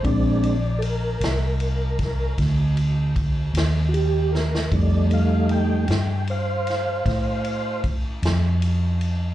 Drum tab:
RD |x-x-x-x-x-x-x-x-x-x-x---|x-x-x-x-x-x-x-x-x-x-x-x-|
SD |------o---o-o-----o---oo|------o---o-o-----o-----|
BD |o---------o-o---o-------|o-----------o---o-------|